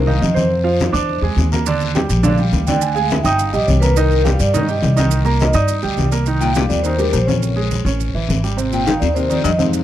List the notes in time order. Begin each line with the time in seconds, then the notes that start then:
Already playing: C2
0.06 D#3 D#4 D#5 F5, high conga, low conga
0.21 F2 D#5, high conga, short guiro
0.34 C3 C4 C5, high conga, short guiro
0.50 high conga, long guiro
0.64 F3 F4 F5, high conga
0.80 high conga, short guiro
0.92 E2 D4 D5 D6, short guiro
1.09 high conga, long guiro
1.22 E2 G#3 G#4 G#5, high conga
1.36 D#2, high conga, short guiro
1.52 A#3 A#4 A#5, high conga, short guiro
1.66 D3 D4 D5, high conga, long guiro, maracas
1.81 high conga, maracas
1.95 G3 G4 G5, high conga, short guiro, maracas
2.09 A#1, short guiro, maracas
2.23 D3 D4 D5 F5, high conga, low conga, long guiro, maracas
2.38 G3 G4 G5, high conga, maracas
2.52 D2, high conga, short guiro, maracas
2.67 D3 D4 D5 G5, high conga, short guiro, maracas
2.81 G#5, high conga, long guiro, maracas
2.94 G#3 G#4 F5 G#5, high conga, maracas
3.10 E5, high conga, short guiro, maracas
3.24 G1 D#4 D#5 G5 D#6, high conga, short guiro, maracas
3.38 F5, high conga, long guiro, maracas
3.53 A#1 G3 G4 D#5 G5, high conga, maracas
3.66 C2 C#5, high conga, short guiro, maracas
3.80 A#3 A#4 B4 A#5, high conga, short guiro, maracas
3.96 D#3 D#4 A#4 D#5, high conga, long guiro, maracas
4.11 high conga, maracas
4.24 G3 G4 F5 G5, high conga, short guiro, maracas
4.39 G2 D5, short guiro, maracas
4.53 D#3 D#4 D#5, high conga, low conga, long guiro, maracas
4.68 G3 G4 G5, high conga, maracas
4.82 C2, high conga, short guiro, maracas
4.97 D#3 D#4 D#5, high conga, short guiro, maracas
5.11 high conga, long guiro, maracas
5.25 A#3 A#4 A#5, high conga, maracas
5.39 D#5, high conga, short guiro, maracas
5.53 G2 D#4 D5 D#5 D#6, high conga, short guiro, maracas
5.68 high conga, long guiro, maracas
5.82 D2 G3 G4 G5, high conga, maracas
5.97 C2, high conga, short guiro, maracas
6.12 A#3 A#4 A#5, short guiro, maracas
6.26 D#3 D#4, high conga, long guiro, maracas
6.41 A#2 G5, high conga, maracas
6.53 A#2 G3 G4 F5, high conga, short guiro, maracas
6.68 D#2 F2 D5, short guiro, maracas
6.82 D#2 D#3 D#4 C5, high conga, long guiro, maracas
6.97 D2 G3 G4 A#4, high conga, maracas
7.12 A#1 D#2 C5, high conga, short guiro, maracas
7.26 F2 C#3 C#4 C#5, high conga, short guiro, maracas
7.42 high conga, long guiro, maracas
7.56 G#3 G#4, high conga
7.71 high conga, short guiro, maracas
7.85 A1 C#4 C#5, high conga, short guiro, maracas
8.00 high conga, long guiro, maracas
8.14 A1 E3 E4, high conga
8.29 G#1, high conga, short guiro, maracas
8.44 G3 G4, high conga, short guiro, maracas
8.57 C3 C4, high conga, long guiro, maracas
8.72 A#2 G5, high conga, maracas
8.86 G#2 D#3 D#4 F5, high conga, short guiro, maracas
9.00 D#2 F2 D5, high conga, short guiro, maracas
9.14 D#2 C3 C4 C5, high conga, long guiro, maracas
9.29 F2 D#3 D#4 D5, high conga, maracas
9.44 F2 G2 D#5, high conga, short guiro, maracas
9.58 G#2 C3 C4 F5, high conga, short guiro, maracas
9.73 high conga, long guiro, maracas